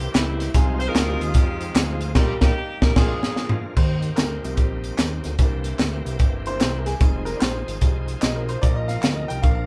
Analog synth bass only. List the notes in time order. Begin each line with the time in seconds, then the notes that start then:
0.15 C#2
0.54 C2
0.95 D2
1.20 D#2
1.35 F2
1.75 D2
2.16 A#1
2.42 A#1
2.82 A#1
2.96 A#1
3.77 D#2
4.18 D2
4.44 C2
4.58 A#1
4.98 D#2
5.25 D2
5.39 C2
5.79 D2
6.06 C2
6.20 G1
6.61 C2
7.01 F1
7.42 A#1
7.68 G#1
7.82 C2
8.23 B1
8.63 A#1
9.04 D2
9.30 C2
9.44 A#1